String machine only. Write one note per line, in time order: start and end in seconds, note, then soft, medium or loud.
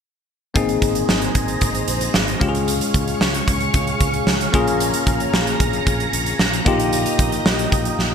0.55 2.39 G#4 medium
0.55 2.40 C5 medium
0.55 2.39 D#5 medium
0.55 2.40 A#5 medium
2.42 6.62 G#4 medium
2.42 6.62 C#5 medium
2.42 8.15 F5 medium
2.42 4.52 C#6 medium
4.53 8.15 A#5 medium
6.65 8.15 G4 medium
6.65 8.15 D#5 medium